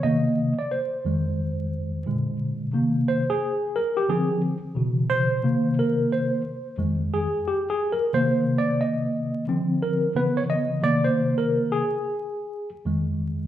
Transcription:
0.03 C3 D#3 A#3 D#5
0.59 D5
0.71 C5
1.05 F2 D#3 G#3
2.06 A#2 D3 G#3
2.73 C3 D#3 A#3
3.08 C5
3.30 G#4
3.76 A#4
3.97 G4
4.09 D3 F3 C4 G#4
4.75 B2 C#3 E3
5.10 C5
5.43 C3 D#3 A#3
5.79 A#4
6.12 C5
6.78 F2 D#3 G#3
7.14 G#4
7.48 G4
7.70 G#4
7.92 A#4
8.13 C3 D#3 A#3 C5
8.58 D5
8.81 D#5
9.48 D3 F3 C4
9.82 A#4
10.15 C#3 E3 B3 B4
10.37 C#5
10.50 D#5
10.82 C3 D#3 A#3 D5
11.04 C5
11.38 A#4
11.72 G#4
12.85 F2 D#3 G#3

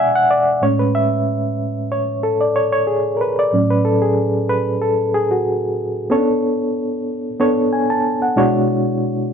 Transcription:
Already playing: B2 G#3 D4 C#5 D5 E5 F#5 G#5
0.16 F#5
0.31 D5
0.62 A2 G#3 C#4 C#5
0.79 B4
0.95 E5
1.92 C#5
2.23 A4
2.41 D5
2.56 C#5
2.73 C#5
2.87 G#4
3.17 A#4
3.21 B4
3.39 D5
3.53 A2 F#3 C#4
3.71 B4
3.85 A4
4.02 G#4
4.49 B4
4.82 A4
5.14 G#4
5.31 F#4
6.10 B3 C#4 A4 C#5
6.17 D4
7.40 B3 D4 A4 C#5
7.73 G#5
7.90 A5
8.22 F#5
8.36 B2 G#3 D4 E4 F#4 C#5

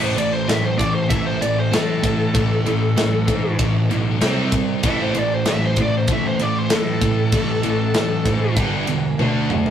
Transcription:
Already playing: A1 A2 E3 A3
0.03 C5
0.16 A1 A2 E3 D5, ride
0.33 C5
0.48 A1 A2 E3 E5, snare, ride
0.63 C5
0.78 A1 A2 E3 D5, kick, ride
0.95 C5
1.09 A1 A2 E3 E5, kick, ride
1.26 C5
1.41 A2 E3 D5, ride
1.59 C5
1.72 A2 E3 A4, snare, ride
2.03 A2 E3, kick, ride
2.34 A1 A2 E3, kick, ride
2.65 A1 A2 E3, ride
2.96 A1 A2 E3, snare, ride
3.27 G#2 A2 E3, kick, ride
3.59 A1 A2 E3, kick, ride
3.89 B1 A2 E3, ride
4.21 C2 C3 G3 C4, snare, ride
4.52 C3 G3, kick, ride
4.83 A1 A2 E3 A3 E5, kick, ride
5.02 C5
5.15 A1 A2 E3, ride
5.19 D5
5.34 C5
5.46 A1 A2 E3 E5, snare, ride
5.65 C5
5.76 A1 A2 E3, kick, ride
5.81 D5
5.98 C5
6.07 A1 A2 E3, kick, ride
6.12 E5
6.27 C5
6.39 A2 E3 D5, ride
6.58 C5
6.70 A2 E3, snare, ride
6.76 A4
7.01 A2 E3, kick, ride
7.32 A1 A2 E3, kick, ride
7.63 A1 A2 E3, ride
7.94 A1 A2 E3, snare, ride
8.25 G#2 A2 E3, kick, ride
8.56 G1 G2 D3 G3, kick, ride
8.87 E1 G2 D3, ride
9.19 D2 D3 A3 D4, high tom
9.50 D3 A3, mid tom
9.66 floor tom

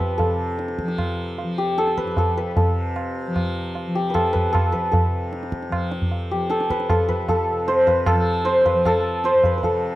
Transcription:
Already playing: F2 C3 F3 G4 A4 B4
0.00 tabla ge
0.18 C3 A4, tabla tin, tabla ge
0.59 tabla te
0.68 tabla te
0.79 F3, tabla ke
0.88 tabla te
0.98 tabla na, tabla ge
1.38 tabla tin
1.43 F3
1.58 G4
1.78 A4, tabla te
1.87 tabla te
1.97 B4, tabla ke
2.04 F2, tabla te
2.17 A4, tabla tin, tabla ge
2.37 B4
2.57 A4, tabla tin, tabla ge
2.64 C3
2.96 tabla na
3.27 F3
3.36 tabla na, tabla ge
3.75 tabla tin
3.87 F3
3.95 G4
4.10 B4
4.14 A4, tabla na, tabla ge
4.33 B4, tabla ge
4.48 F2
4.53 A4, tabla na, tabla ge
4.72 B4, tabla ge
4.92 A4, tabla tin, tabla ge
5.09 C3
5.33 tabla te
5.43 tabla te
5.52 tabla ke
5.63 tabla te
5.69 F3, tabla na, tabla ge
5.91 tabla te
6.02 tabla ge
6.12 tabla tin
6.31 F3 G4
6.50 A4, tabla te
6.60 tabla te
6.70 B4, tabla ke
6.80 tabla te
6.90 F2 A4, tabla na, tabla ge
7.08 B4, tabla ge
7.29 A4, tabla tin, tabla ge
7.52 C3
7.68 C5, tabla te
7.87 B4, tabla tin, tabla ge
8.06 A4, tabla na, tabla ge
8.13 F3
8.45 C5, tabla te
8.61 C5
8.66 B4, tabla tin, tabla ge
8.74 F3
8.85 A4, tabla na, tabla ge
9.24 C5, tabla te
9.34 F2
9.44 B4, tabla tin, tabla ge
9.58 B4
9.63 C3 A4, tabla tin, tabla ge

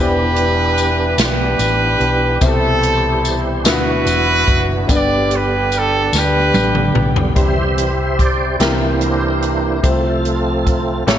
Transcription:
Already playing: E1 E3 B3 D4 E4 G4 B4
0.02 D5
0.36 closed hi-hat
0.78 closed hi-hat, tambourine
1.18 B1 D4 B4, snare, closed hi-hat, tambourine
1.22 G4
1.59 A1, closed hi-hat, tambourine
2.00 B1, closed hi-hat
2.41 C2 B2 C3 E3 G3 E4 G4 A4 C5, kick, closed hi-hat, tambourine
2.83 closed hi-hat
3.25 closed hi-hat, tambourine
3.64 D2 B2 D3 E3 B3 D4 E4 F4 F#4 B4, snare, closed hi-hat, tambourine
3.68 E4 F#4 B4
4.06 E1, closed hi-hat, tambourine
4.48 F#1, kick, closed hi-hat
4.87 G1 G2 D3 G3 A#3 B3 D4 G4 D5, kick, closed hi-hat, tambourine
4.91 G4 B4 D5
4.96 B3
5.31 B4, closed hi-hat
5.72 A4, closed hi-hat, tambourine
6.13 D2 D4 G4, snare, tambourine
6.17 B4
6.54 A1, high tom, tambourine
6.75 mid tom
6.94 B1, mid tom
7.16 floor tom
7.35 C2 C3 E3 G3 C4 D4 G4 C5 E5, kick, closed hi-hat
7.43 E4
7.78 closed hi-hat
8.19 D5, kick, closed hi-hat
8.59 C2 C3 E3 G3 A#3 C4 D4 E4 G4 A#4 C5, snare, closed hi-hat
9.01 closed hi-hat
9.42 closed hi-hat
9.82 C2 C3 F3 G3 A3 C4 F4 A4 C5, kick, closed hi-hat
9.89 A3
10.25 closed hi-hat
10.67 kick, closed hi-hat
11.07 A1 A2 G3 A#3 C#4 G4 A4 C#5, snare, closed hi-hat

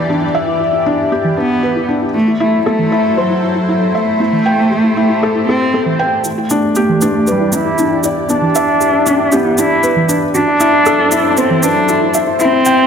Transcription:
Already playing: E3 D4 E4 G4 B4 D5
0.09 D4 G4
0.21 E4
0.35 E4 E5
0.47 E4
0.60 E4
0.73 E4
0.86 D4 E4
1.11 B3 G4
1.24 E3
1.37 B3 D4 B4
1.63 G4 B4
1.76 E4
1.89 D4 E4
2.02 E4
2.14 F#3 A3 E4 A4 C5
2.28 E4
2.40 A3 E4
2.66 A3 B3 A4
2.79 E3
2.91 E4 B4
3.17 F#3 F#4 C5
3.30 E4
3.43 E4
3.55 E4
3.68 F#3 E4
3.81 E4
3.94 A3 E4 E5
4.19 A3 B3 E4 G4
4.33 E3
4.46 B4 G5
4.71 G4
4.84 E4
4.97 E4
5.09 E4
5.22 E4 A4
5.35 E4
5.48 C4 E4 A4
5.74 B3 A4
5.86 E3
5.99 B4 G5
6.24 E3 A3 E4 G4 D5, shaker
6.38 E4
6.50 D4 E4, shaker
6.75 B3 G4, shaker
6.89 E3
7.01 D4 B4, shaker
7.27 G3 G4 B4, shaker
7.40 E4
7.52 E4, shaker
7.66 E4
7.78 D4 E4, shaker
7.91 E4
8.03 E4 D5, shaker
8.29 B3 D4, shaker
8.42 E3
8.55 B4 E5, shaker
8.81 G4, shaker
8.93 E4
9.06 D4 E4, shaker
9.19 E4
9.32 B3 E4 G4, shaker
9.45 E4
9.57 D4 E4, shaker
9.83 B3 B4, shaker
9.96 E3
10.09 D4 B4, shaker
10.34 F#3 D4 F#4 A4 C5, shaker
10.47 E4
10.60 E4, shaker
10.73 E4
10.86 E4 A4, shaker
10.99 E4
11.11 E4, shaker
11.31 D4
11.37 B3 C4 C5, shaker
11.50 E3
11.63 D4 B4, shaker
11.89 E4 F#4, shaker
12.01 E4
12.14 E4 E5, shaker
12.27 E4
12.39 A3 C4 E4 G4, shaker
12.53 E4
12.65 E4 G5, shaker

